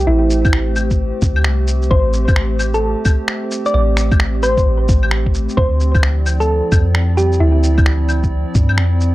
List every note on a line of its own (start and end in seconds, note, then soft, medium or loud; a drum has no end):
0.00 5.53 A3 medium
0.00 9.15 C4 medium
0.00 5.53 G4 medium
0.00 5.53 C5 medium
0.07 1.12 A1 loud
0.07 0.53 E4 medium
0.30 shaker medium
0.45 kick loud
0.45 claves medium
0.45 shaker soft
0.53 finger snap loud
0.76 claves medium
0.76 shaker medium
0.90 kick medium
0.90 shaker soft
1.22 1.47 D2 loud
1.22 kick loud
1.22 shaker medium
1.36 claves medium
1.44 1.90 C2 loud
1.44 finger snap loud
1.67 shaker medium
1.82 shaker soft
1.91 2.95 A1 loud
1.91 2.37 C5 loud
1.91 kick loud
2.13 shaker medium
2.28 kick loud
2.28 claves medium
2.28 shaker soft
2.36 finger snap loud
2.59 claves medium
2.59 shaker medium
2.74 2.98 A4 medium
2.74 shaker soft
3.05 kick loud
3.05 claves medium
3.05 shaker medium
3.28 finger snap loud
3.51 shaker medium
3.66 3.71 D5 medium
3.66 shaker soft
3.74 4.65 A1 loud
3.74 3.83 D5 medium
3.97 finger snap medium
3.97 shaker medium
4.11 kick loud
4.11 claves medium
4.11 shaker soft
4.20 finger snap loud
4.43 5.08 C5 medium
4.43 claves soft
4.43 shaker medium
4.57 kick medium
4.57 shaker soft
4.66 4.87 A1 medium
4.89 kick loud
4.89 shaker medium
5.03 claves medium
5.11 finger snap loud
5.26 kick medium
5.35 shaker medium
5.49 shaker soft
5.57 6.62 D2 loud
5.57 9.15 F3 medium
5.57 9.15 E4 medium
5.57 6.03 C5 medium
5.57 9.15 D5 medium
5.57 kick loud
5.80 shaker medium
5.95 kick loud
5.95 claves medium
5.95 shaker soft
6.03 finger snap loud
6.26 claves medium
6.26 shaker medium
6.40 6.64 A4 medium
6.40 shaker soft
6.72 7.40 F2 medium
6.72 kick loud
6.72 claves medium
6.72 shaker medium
6.95 finger snap loud
7.17 7.39 G4 medium
7.17 shaker medium
7.32 shaker soft
7.40 8.45 D2 loud
7.40 7.86 E4 medium
7.63 shaker medium
7.78 kick loud
7.78 claves medium
7.78 shaker soft
7.86 finger snap loud
8.09 claves medium
8.09 shaker medium
8.23 kick medium
8.23 shaker soft
8.55 8.80 G2 loud
8.55 kick loud
8.55 shaker medium
8.69 claves medium
8.78 9.15 F2 loud
8.78 finger snap loud
9.01 shaker medium